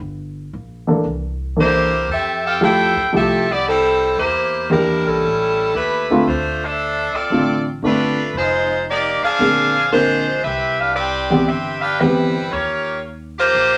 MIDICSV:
0, 0, Header, 1, 5, 480
1, 0, Start_track
1, 0, Key_signature, 0, "major"
1, 0, Tempo, 521286
1, 2, Time_signature, 4, 2, 24, 8
1, 12685, End_track
2, 0, Start_track
2, 0, Title_t, "Saxophone section"
2, 0, Program_c, 0, 65
2, 1470, Note_on_c, 0, 72, 93
2, 1475, Note_on_c, 0, 64, 77
2, 1477, Note_on_c, 0, 67, 79
2, 1481, Note_on_c, 0, 58, 78
2, 1906, Note_off_c, 0, 72, 0
2, 1908, Note_off_c, 0, 64, 0
2, 1910, Note_off_c, 0, 67, 0
2, 1912, Note_off_c, 0, 58, 0
2, 1939, Note_on_c, 0, 60, 71
2, 1948, Note_on_c, 0, 69, 75
2, 1949, Note_on_c, 0, 67, 77
2, 1952, Note_on_c, 0, 76, 87
2, 2235, Note_off_c, 0, 60, 0
2, 2240, Note_off_c, 0, 67, 0
2, 2240, Note_off_c, 0, 69, 0
2, 2242, Note_off_c, 0, 76, 0
2, 2268, Note_on_c, 0, 69, 73
2, 2270, Note_on_c, 0, 67, 76
2, 2271, Note_on_c, 0, 77, 90
2, 2273, Note_on_c, 0, 60, 74
2, 2406, Note_off_c, 0, 67, 0
2, 2406, Note_off_c, 0, 69, 0
2, 2407, Note_off_c, 0, 77, 0
2, 2408, Note_off_c, 0, 60, 0
2, 2424, Note_on_c, 0, 69, 79
2, 2425, Note_on_c, 0, 72, 78
2, 2430, Note_on_c, 0, 64, 80
2, 2433, Note_on_c, 0, 79, 92
2, 2863, Note_off_c, 0, 69, 0
2, 2864, Note_off_c, 0, 72, 0
2, 2867, Note_off_c, 0, 64, 0
2, 2868, Note_off_c, 0, 79, 0
2, 2910, Note_on_c, 0, 67, 83
2, 2912, Note_on_c, 0, 76, 94
2, 2917, Note_on_c, 0, 69, 83
2, 2918, Note_on_c, 0, 60, 85
2, 3223, Note_off_c, 0, 67, 0
2, 3224, Note_off_c, 0, 76, 0
2, 3227, Note_off_c, 0, 60, 0
2, 3227, Note_off_c, 0, 69, 0
2, 3236, Note_on_c, 0, 59, 73
2, 3236, Note_on_c, 0, 64, 71
2, 3237, Note_on_c, 0, 67, 72
2, 3240, Note_on_c, 0, 74, 83
2, 3380, Note_off_c, 0, 59, 0
2, 3381, Note_off_c, 0, 64, 0
2, 3381, Note_off_c, 0, 67, 0
2, 3382, Note_off_c, 0, 74, 0
2, 3386, Note_on_c, 0, 69, 82
2, 3387, Note_on_c, 0, 60, 77
2, 3388, Note_on_c, 0, 55, 71
2, 3393, Note_on_c, 0, 64, 74
2, 3825, Note_off_c, 0, 60, 0
2, 3825, Note_off_c, 0, 69, 0
2, 3826, Note_off_c, 0, 55, 0
2, 3828, Note_off_c, 0, 64, 0
2, 3856, Note_on_c, 0, 64, 65
2, 3857, Note_on_c, 0, 58, 68
2, 3857, Note_on_c, 0, 72, 74
2, 3864, Note_on_c, 0, 67, 74
2, 4300, Note_off_c, 0, 58, 0
2, 4300, Note_off_c, 0, 64, 0
2, 4300, Note_off_c, 0, 72, 0
2, 4303, Note_off_c, 0, 67, 0
2, 4334, Note_on_c, 0, 64, 70
2, 4338, Note_on_c, 0, 70, 73
2, 4342, Note_on_c, 0, 62, 68
2, 4343, Note_on_c, 0, 55, 72
2, 4648, Note_off_c, 0, 55, 0
2, 4653, Note_off_c, 0, 64, 0
2, 4657, Note_off_c, 0, 70, 0
2, 4659, Note_on_c, 0, 55, 75
2, 4660, Note_off_c, 0, 62, 0
2, 4663, Note_on_c, 0, 61, 77
2, 4664, Note_on_c, 0, 64, 72
2, 4668, Note_on_c, 0, 69, 87
2, 5281, Note_off_c, 0, 64, 0
2, 5292, Note_off_c, 0, 55, 0
2, 5292, Note_on_c, 0, 64, 69
2, 5295, Note_off_c, 0, 61, 0
2, 5297, Note_off_c, 0, 69, 0
2, 5300, Note_on_c, 0, 67, 68
2, 5303, Note_on_c, 0, 57, 70
2, 5305, Note_on_c, 0, 71, 87
2, 5737, Note_off_c, 0, 64, 0
2, 5741, Note_off_c, 0, 67, 0
2, 5743, Note_off_c, 0, 57, 0
2, 5744, Note_off_c, 0, 71, 0
2, 5781, Note_on_c, 0, 62, 66
2, 5781, Note_on_c, 0, 72, 75
2, 5784, Note_on_c, 0, 65, 67
2, 5791, Note_on_c, 0, 57, 67
2, 6099, Note_off_c, 0, 62, 0
2, 6099, Note_off_c, 0, 72, 0
2, 6100, Note_off_c, 0, 65, 0
2, 6104, Note_off_c, 0, 57, 0
2, 6113, Note_on_c, 0, 76, 90
2, 6114, Note_on_c, 0, 69, 75
2, 6118, Note_on_c, 0, 72, 73
2, 6120, Note_on_c, 0, 62, 71
2, 6572, Note_off_c, 0, 69, 0
2, 6580, Note_on_c, 0, 60, 70
2, 6581, Note_on_c, 0, 65, 66
2, 6581, Note_on_c, 0, 74, 84
2, 6583, Note_off_c, 0, 76, 0
2, 6583, Note_on_c, 0, 69, 68
2, 6586, Note_off_c, 0, 62, 0
2, 6586, Note_off_c, 0, 72, 0
2, 7045, Note_off_c, 0, 60, 0
2, 7045, Note_off_c, 0, 65, 0
2, 7045, Note_off_c, 0, 74, 0
2, 7047, Note_off_c, 0, 69, 0
2, 7226, Note_on_c, 0, 65, 74
2, 7230, Note_on_c, 0, 62, 77
2, 7230, Note_on_c, 0, 71, 88
2, 7232, Note_on_c, 0, 57, 78
2, 7664, Note_off_c, 0, 65, 0
2, 7666, Note_off_c, 0, 62, 0
2, 7666, Note_off_c, 0, 71, 0
2, 7667, Note_off_c, 0, 57, 0
2, 7709, Note_on_c, 0, 56, 69
2, 7710, Note_on_c, 0, 72, 84
2, 7713, Note_on_c, 0, 65, 71
2, 7722, Note_on_c, 0, 63, 68
2, 8145, Note_off_c, 0, 56, 0
2, 8146, Note_off_c, 0, 72, 0
2, 8148, Note_off_c, 0, 65, 0
2, 8152, Note_off_c, 0, 63, 0
2, 8194, Note_on_c, 0, 74, 85
2, 8195, Note_on_c, 0, 63, 70
2, 8197, Note_on_c, 0, 58, 80
2, 8198, Note_on_c, 0, 67, 77
2, 8482, Note_off_c, 0, 74, 0
2, 8483, Note_off_c, 0, 63, 0
2, 8484, Note_off_c, 0, 58, 0
2, 8485, Note_off_c, 0, 67, 0
2, 8502, Note_on_c, 0, 68, 92
2, 8503, Note_on_c, 0, 62, 98
2, 8504, Note_on_c, 0, 72, 88
2, 8506, Note_on_c, 0, 77, 109
2, 9095, Note_off_c, 0, 68, 0
2, 9096, Note_off_c, 0, 62, 0
2, 9096, Note_off_c, 0, 72, 0
2, 9097, Note_off_c, 0, 77, 0
2, 9134, Note_on_c, 0, 65, 84
2, 9137, Note_on_c, 0, 72, 94
2, 9138, Note_on_c, 0, 62, 74
2, 9144, Note_on_c, 0, 56, 84
2, 9576, Note_off_c, 0, 65, 0
2, 9578, Note_off_c, 0, 72, 0
2, 9579, Note_off_c, 0, 62, 0
2, 9582, Note_off_c, 0, 56, 0
2, 9610, Note_on_c, 0, 76, 93
2, 9614, Note_on_c, 0, 71, 80
2, 9617, Note_on_c, 0, 60, 73
2, 9620, Note_on_c, 0, 67, 78
2, 9929, Note_off_c, 0, 71, 0
2, 9931, Note_off_c, 0, 76, 0
2, 9933, Note_off_c, 0, 67, 0
2, 9935, Note_off_c, 0, 60, 0
2, 9938, Note_on_c, 0, 62, 75
2, 9940, Note_on_c, 0, 71, 69
2, 9944, Note_on_c, 0, 67, 80
2, 9948, Note_on_c, 0, 77, 85
2, 10075, Note_off_c, 0, 67, 0
2, 10080, Note_off_c, 0, 71, 0
2, 10082, Note_on_c, 0, 60, 80
2, 10086, Note_on_c, 0, 67, 75
2, 10090, Note_off_c, 0, 62, 0
2, 10090, Note_on_c, 0, 74, 82
2, 10091, Note_on_c, 0, 71, 74
2, 10094, Note_off_c, 0, 77, 0
2, 10529, Note_off_c, 0, 60, 0
2, 10531, Note_off_c, 0, 67, 0
2, 10533, Note_off_c, 0, 74, 0
2, 10534, Note_off_c, 0, 71, 0
2, 10568, Note_on_c, 0, 60, 78
2, 10569, Note_on_c, 0, 67, 79
2, 10569, Note_on_c, 0, 76, 97
2, 10570, Note_on_c, 0, 71, 74
2, 10862, Note_off_c, 0, 71, 0
2, 10868, Note_off_c, 0, 67, 0
2, 10873, Note_on_c, 0, 71, 71
2, 10879, Note_on_c, 0, 67, 72
2, 10879, Note_on_c, 0, 77, 76
2, 10884, Note_on_c, 0, 62, 74
2, 10889, Note_off_c, 0, 60, 0
2, 10890, Note_off_c, 0, 76, 0
2, 11024, Note_off_c, 0, 71, 0
2, 11027, Note_off_c, 0, 77, 0
2, 11028, Note_off_c, 0, 67, 0
2, 11031, Note_off_c, 0, 62, 0
2, 11046, Note_on_c, 0, 60, 68
2, 11050, Note_on_c, 0, 71, 82
2, 11051, Note_on_c, 0, 64, 69
2, 11054, Note_on_c, 0, 55, 67
2, 11523, Note_off_c, 0, 60, 0
2, 11525, Note_off_c, 0, 71, 0
2, 11526, Note_off_c, 0, 64, 0
2, 11527, Note_off_c, 0, 55, 0
2, 11530, Note_on_c, 0, 58, 63
2, 11531, Note_on_c, 0, 67, 58
2, 11531, Note_on_c, 0, 73, 73
2, 11534, Note_on_c, 0, 65, 62
2, 11999, Note_off_c, 0, 58, 0
2, 11999, Note_off_c, 0, 67, 0
2, 12000, Note_off_c, 0, 73, 0
2, 12001, Note_off_c, 0, 65, 0
2, 12327, Note_on_c, 0, 65, 95
2, 12328, Note_on_c, 0, 72, 106
2, 12329, Note_on_c, 0, 67, 86
2, 12331, Note_on_c, 0, 58, 92
2, 12685, Note_off_c, 0, 58, 0
2, 12685, Note_off_c, 0, 65, 0
2, 12685, Note_off_c, 0, 67, 0
2, 12685, Note_off_c, 0, 72, 0
2, 12685, End_track
3, 0, Start_track
3, 0, Title_t, "Grand piano"
3, 0, Program_c, 1, 0
3, 804, Note_on_c, 1, 52, 55
3, 808, Note_on_c, 1, 58, 48
3, 813, Note_on_c, 1, 69, 59
3, 814, Note_on_c, 1, 62, 53
3, 947, Note_off_c, 1, 52, 0
3, 949, Note_off_c, 1, 58, 0
3, 951, Note_off_c, 1, 69, 0
3, 952, Note_off_c, 1, 62, 0
3, 1441, Note_on_c, 1, 52, 51
3, 1443, Note_on_c, 1, 58, 41
3, 1444, Note_on_c, 1, 62, 46
3, 1448, Note_on_c, 1, 69, 50
3, 1735, Note_off_c, 1, 52, 0
3, 1736, Note_off_c, 1, 58, 0
3, 1737, Note_off_c, 1, 62, 0
3, 1739, Note_off_c, 1, 69, 0
3, 2400, Note_on_c, 1, 57, 52
3, 2402, Note_on_c, 1, 53, 57
3, 2404, Note_on_c, 1, 64, 53
3, 2406, Note_on_c, 1, 67, 63
3, 2696, Note_off_c, 1, 57, 0
3, 2697, Note_off_c, 1, 53, 0
3, 2697, Note_off_c, 1, 64, 0
3, 2698, Note_off_c, 1, 67, 0
3, 2878, Note_on_c, 1, 53, 51
3, 2882, Note_on_c, 1, 57, 49
3, 2883, Note_on_c, 1, 64, 46
3, 2890, Note_on_c, 1, 67, 62
3, 3175, Note_off_c, 1, 53, 0
3, 3176, Note_off_c, 1, 57, 0
3, 3177, Note_off_c, 1, 64, 0
3, 3181, Note_off_c, 1, 67, 0
3, 4325, Note_on_c, 1, 52, 47
3, 4330, Note_on_c, 1, 58, 45
3, 4336, Note_on_c, 1, 62, 43
3, 4338, Note_on_c, 1, 67, 49
3, 4807, Note_off_c, 1, 52, 0
3, 4810, Note_off_c, 1, 58, 0
3, 4813, Note_off_c, 1, 62, 0
3, 4814, Note_off_c, 1, 67, 0
3, 5621, Note_on_c, 1, 50, 61
3, 5625, Note_on_c, 1, 60, 58
3, 5626, Note_on_c, 1, 57, 56
3, 5633, Note_on_c, 1, 65, 71
3, 5758, Note_off_c, 1, 50, 0
3, 5760, Note_off_c, 1, 57, 0
3, 5760, Note_off_c, 1, 60, 0
3, 5764, Note_off_c, 1, 65, 0
3, 6731, Note_on_c, 1, 57, 45
3, 6736, Note_on_c, 1, 50, 48
3, 6737, Note_on_c, 1, 60, 47
3, 6741, Note_on_c, 1, 65, 50
3, 7021, Note_off_c, 1, 57, 0
3, 7024, Note_off_c, 1, 50, 0
3, 7024, Note_off_c, 1, 60, 0
3, 7026, Note_off_c, 1, 65, 0
3, 7207, Note_on_c, 1, 50, 57
3, 7215, Note_on_c, 1, 57, 51
3, 7217, Note_on_c, 1, 60, 49
3, 7217, Note_on_c, 1, 62, 61
3, 7499, Note_off_c, 1, 50, 0
3, 7503, Note_off_c, 1, 57, 0
3, 7504, Note_off_c, 1, 60, 0
3, 7504, Note_off_c, 1, 62, 0
3, 8650, Note_on_c, 1, 50, 47
3, 8654, Note_on_c, 1, 58, 48
3, 8659, Note_on_c, 1, 60, 44
3, 8659, Note_on_c, 1, 68, 51
3, 8939, Note_off_c, 1, 50, 0
3, 8942, Note_off_c, 1, 58, 0
3, 8944, Note_off_c, 1, 60, 0
3, 8944, Note_off_c, 1, 68, 0
3, 9137, Note_on_c, 1, 60, 43
3, 9138, Note_on_c, 1, 50, 51
3, 9138, Note_on_c, 1, 58, 47
3, 9139, Note_on_c, 1, 70, 55
3, 9423, Note_off_c, 1, 50, 0
3, 9423, Note_off_c, 1, 58, 0
3, 9423, Note_off_c, 1, 60, 0
3, 9424, Note_off_c, 1, 70, 0
3, 10406, Note_on_c, 1, 59, 47
3, 10408, Note_on_c, 1, 52, 51
3, 10412, Note_on_c, 1, 60, 48
3, 10417, Note_on_c, 1, 67, 60
3, 10548, Note_off_c, 1, 52, 0
3, 10548, Note_off_c, 1, 59, 0
3, 10550, Note_off_c, 1, 60, 0
3, 10553, Note_off_c, 1, 67, 0
3, 11054, Note_on_c, 1, 52, 52
3, 11055, Note_on_c, 1, 59, 51
3, 11064, Note_on_c, 1, 60, 51
3, 11064, Note_on_c, 1, 67, 59
3, 11339, Note_off_c, 1, 52, 0
3, 11339, Note_off_c, 1, 59, 0
3, 11344, Note_off_c, 1, 60, 0
3, 11344, Note_off_c, 1, 67, 0
3, 12685, End_track
4, 0, Start_track
4, 0, Title_t, "Upright bass"
4, 0, Program_c, 2, 32
4, 0, Note_on_c, 2, 31, 78
4, 445, Note_off_c, 2, 31, 0
4, 492, Note_on_c, 2, 34, 77
4, 935, Note_off_c, 2, 34, 0
4, 963, Note_on_c, 2, 36, 75
4, 1889, Note_off_c, 2, 36, 0
4, 1917, Note_on_c, 2, 41, 81
4, 2690, Note_off_c, 2, 41, 0
4, 2724, Note_on_c, 2, 42, 74
4, 2873, Note_off_c, 2, 42, 0
4, 2879, Note_on_c, 2, 36, 82
4, 3808, Note_off_c, 2, 36, 0
4, 3841, Note_on_c, 2, 40, 73
4, 4612, Note_off_c, 2, 40, 0
4, 4656, Note_on_c, 2, 35, 61
4, 4800, Note_off_c, 2, 35, 0
4, 4812, Note_on_c, 2, 33, 71
4, 5257, Note_off_c, 2, 33, 0
4, 5282, Note_on_c, 2, 39, 70
4, 5732, Note_off_c, 2, 39, 0
4, 5765, Note_on_c, 2, 38, 73
4, 6534, Note_off_c, 2, 38, 0
4, 6724, Note_on_c, 2, 33, 72
4, 7173, Note_off_c, 2, 33, 0
4, 7203, Note_on_c, 2, 31, 72
4, 7652, Note_off_c, 2, 31, 0
4, 7678, Note_on_c, 2, 29, 77
4, 8449, Note_off_c, 2, 29, 0
4, 8647, Note_on_c, 2, 34, 74
4, 9569, Note_off_c, 2, 34, 0
4, 9615, Note_on_c, 2, 36, 76
4, 10532, Note_off_c, 2, 36, 0
4, 10570, Note_on_c, 2, 31, 72
4, 11488, Note_off_c, 2, 31, 0
4, 11527, Note_on_c, 2, 39, 75
4, 12444, Note_off_c, 2, 39, 0
4, 12474, Note_on_c, 2, 34, 67
4, 12685, Note_off_c, 2, 34, 0
4, 12685, End_track
5, 0, Start_track
5, 0, Title_t, "Muted upright bass strokes"
5, 6572, Note_on_c, 9, 29, 35
5, 6664, Note_off_c, 9, 29, 0
5, 8494, Note_on_c, 9, 29, 38
5, 8586, Note_off_c, 9, 29, 0
5, 12685, End_track
0, 0, End_of_file